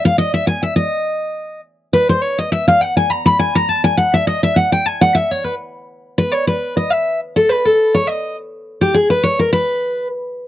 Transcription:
steel-string acoustic guitar
0.05 F5
0.18 D#5
0.34 E5
0.47 G#5
0.63 E5
0.76 D#5
1.93 B4
2.09 C5
2.22 C#5
2.38 D#5
2.52 E5
2.68 F5
2.81 F#5
2.97 G#5
3.10 A#5
3.26 B5
3.39 G#5
3.55 A#5
3.69 A5
3.84 G#5
3.97 F#5
4.14 E5
4.27 D#5
4.43 E5
4.56 F#5
4.72 G5
4.86 G#5
5.01 F#5
5.15 E5
5.31 C#5
5.44 B4
6.18 B4
6.32 C#5
6.47 B4
6.77 D#5
6.90 E5
7.36 A4
7.49 B4
7.65 A4
7.94 C#5
8.07 D#5
8.81 G4
8.94 G#4
9.10 B4
9.23 C#5
9.39 A#4
9.53 B4

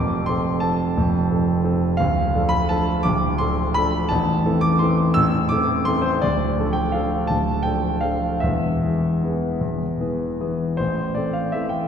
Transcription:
grand piano
Already playing: F1 F2 D6
0.26 F3 C4 A4 C6
0.60 F3 C4 A4 A5
0.97 F1 F2
1.31 F3 C4 A4
1.64 F3 C4 A4
1.97 D1 D2 F5
2.35 F3 D4 A4
2.49 B5
2.69 F3 D4 A4 A5
3.03 D1 D2 D6
3.38 F3 D4 A4 C6
3.74 F3 D4 A4 B5
4.09 A0 A1 A5
4.45 E3 C4 A4
4.61 D6
4.79 E3 C4 A4 C6
5.14 A0 A1 E6
5.49 E3 C4 A4 D6
5.85 E3 C4 A4 C6
6.02 C5
6.22 D1 D2 D5
6.59 F3 D4 A4
6.73 G5
6.92 F3 D4 A4 F5
7.27 D1 D2 A5
7.63 F3 D4 A4 G5
8.01 F3 D4 A4 F5
8.40 E1 E2 E5
8.82 E3 B3 G#4
9.23 E3 B3 G#4
9.61 E1 E2
10.00 E3 B3 G#4
10.40 E3 B3 G#4
10.77 A1 C5
11.15 C4 A4 D5
11.33 F5
11.52 E3 C4 A4 E5
11.69 G5

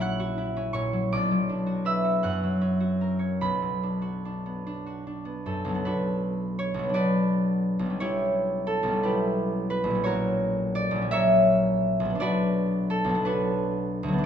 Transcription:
harp
Already playing: A#1 F#3 C#4 F#4 A#5 A#6
0.00 E4 F#5 F#6
0.20 F#4
0.38 E4
0.57 C#4
0.73 A#2 C#5 C#6
0.93 F#3
1.12 B1 D5 D6
1.31 F#3
1.49 D4
1.66 F#4
1.85 B4 E5 E6
2.04 F#4
2.23 F#2 F#5 F#6
2.44 F#3
2.61 C#4
2.80 F#4
3.01 A#4
3.19 C#5
3.41 B1 B4 B5
3.62 F#3
3.83 D4
4.02 F#4
4.25 D4
4.46 B3
4.67 D4
4.86 F#4
5.07 D4
5.25 B3
5.46 F#2 A4
5.65 B1 F#3
5.75 B3
5.85 D4 F#4 B4
6.59 C#5
6.74 B1
6.79 F#3
6.83 B3
6.89 D4
6.94 F#4 B4 D5
7.79 B1
7.86 G3 C#4
8.00 E4 G4 C#5
8.67 A4
8.83 B1
8.88 G3
8.93 C#4
9.03 E4 G4 B4
9.70 B4
9.84 A#1
9.90 F#3
9.95 C#4
10.04 F#4 A#4 C#5
10.75 D5
10.91 A#1
10.96 F#3
11.01 C#4
11.11 A#4 C#5 E5
12.00 B1
12.05 F#3
12.10 B3
12.15 D4
12.20 F#4 B4 D5
12.90 A4
13.04 B1
13.09 F#3
13.15 B3
13.25 D4 F#4 B4
14.03 D2
14.08 F#3
14.13 B3
14.18 D4

